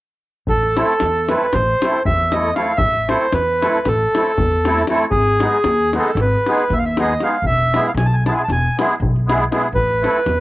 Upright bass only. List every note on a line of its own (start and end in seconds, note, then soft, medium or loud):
0.48 0.80 A1 medium
1.02 1.33 E2 medium
1.55 1.72 A1 medium
2.06 2.50 E2 loud
2.80 3.12 A1 medium
3.32 3.64 E2 medium
3.86 4.03 A1 medium
4.38 4.82 E2 medium
5.11 5.43 G#1 medium
5.64 5.96 D#2 medium
6.15 6.33 G#1 medium
6.70 7.14 D#2 loud
7.42 7.74 E1 medium
7.95 8.27 B1 medium
8.48 8.66 E1 medium
9.00 9.44 B1 medium
9.72 10.05 A1 medium
10.26 10.40 E2 medium